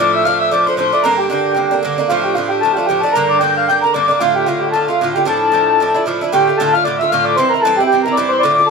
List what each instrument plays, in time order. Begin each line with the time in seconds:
Already playing: tin whistle D6
0.00 bouzouki A2 F3 A3 D4, accordion D5
0.13 accordion E5, tin whistle E6
0.24 bouzouki A2 F3 A3 D4, accordion F5, tin whistle F6
0.39 accordion E5, tin whistle E6
0.51 bouzouki A2 F3 A3 D4, accordion D5, tin whistle D6
0.66 bouzouki F3 A3 D4, accordion C5, tin whistle C6
0.77 bouzouki A2 F3 A3 D4, accordion C5, tin whistle C6
0.92 bouzouki F3 A3 D4, accordion D5
1.03 bouzouki G2 D3 A#3 D4, accordion A#4, tin whistle A#5
1.18 accordion G4, tin whistle G5
1.30 bouzouki G2 D3 A#3 D4, accordion G4, tin whistle G5
1.55 bouzouki G2 D3 A#3 D4
1.71 bouzouki D3 A#3 D4
1.83 bouzouki G2 D3 A#3 D4
1.98 bouzouki D3 A#3 D4
2.08 bouzouki A2 F3 A3 D4, accordion F4, tin whistle F5
2.23 accordion G4, tin whistle G5
2.34 bouzouki A2 F3 A3 D4, accordion F4, tin whistle F5
2.49 accordion G4, tin whistle G5
2.61 bouzouki A2 F3 A3, accordion A4, tin whistle A5
2.65 bouzouki D4
2.73 accordion F4 G4
2.77 bouzouki F3 A3 D4
2.86 bouzouki A2 F3, accordion G4, tin whistle G5
2.90 bouzouki A3 D4
3.00 bouzouki D4, accordion A4, tin whistle A5
3.05 bouzouki F3 A3
3.12 bouzouki G2, accordion A#4, tin whistle A#5
3.16 bouzouki D3 A#3 D4
3.28 accordion D5
3.40 bouzouki G2 D3 A#3, accordion G5, tin whistle G6
3.44 bouzouki D4
3.57 accordion F5
3.68 bouzouki G2 D3 A#3 D4, accordion G5, tin whistle G6
3.82 bouzouki D4, accordion A#4, tin whistle A#5
3.86 bouzouki D3 A#3
3.94 bouzouki G2 D3 A#3 D4, accordion D5, tin whistle D6
4.08 bouzouki D3 A#3 D4
4.20 bouzouki A2 D3 A3 F4, accordion F4, tin whistle F5
4.35 accordion G4, tin whistle G5
4.46 bouzouki A2 D3 A3 F4, accordion F4, tin whistle F5
4.60 accordion G4, tin whistle G5
4.72 bouzouki A2 D3 A3 F4, accordion A4, tin whistle A5
4.87 bouzouki A3 F4, accordion F4, tin whistle F5
4.91 bouzouki D3
5.01 bouzouki A2 D3 A3 F4
5.14 bouzouki D3 A3 F4, accordion G4, tin whistle G5
5.25 bouzouki A2 F3 D4 E4, accordion A4, tin whistle A5
5.52 bouzouki A2 F3 D4 E4
5.80 bouzouki A2 F3 D4 E4
5.94 bouzouki F3 D4 E4
6.06 bouzouki A2 F3 D4 E4
6.21 bouzouki F3 D4 E4
6.32 bouzouki A2 D3 A3 F4, accordion G4, tin whistle G5
6.47 bouzouki D3 A3 F4
6.57 bouzouki A2 D3 A3, accordion A4, tin whistle A5
6.62 bouzouki F4
6.73 bouzouki D3 A3 F4, accordion F5, tin whistle F6
6.84 bouzouki A2 D3 A3, accordion D5, tin whistle D6
6.88 bouzouki F4
6.99 bouzouki F4, accordion E5, tin whistle E6
7.03 bouzouki D3 A3
7.09 bouzouki A2 D3, accordion F5, tin whistle F6
7.14 bouzouki A3 F4
7.24 accordion D5, tin whistle D6
7.36 bouzouki G2 E3 C4 E4, accordion C5, tin whistle C6
7.49 accordion A#4, tin whistle A#5
7.54 bouzouki E3 C4 E4
7.62 bouzouki G2 E3, accordion A4, tin whistle A5
7.66 bouzouki C4 E4
7.77 bouzouki E4, accordion G4, tin whistle G5
7.81 bouzouki E3 C4
7.87 accordion G4
7.91 bouzouki G2 E3 C4 E4, tin whistle G5
8.03 bouzouki E4, accordion A#4, tin whistle A#5
8.08 bouzouki E3 C4
8.13 accordion D5, tin whistle D6
8.17 bouzouki G2 E3 C4 E4
8.29 accordion C5
8.33 tin whistle C6
8.39 bouzouki A2, accordion D5
8.44 bouzouki D3 A3 F4, tin whistle D6
8.54 accordion D5
8.58 bouzouki D3 A3 F4, tin whistle D6
8.66 accordion A4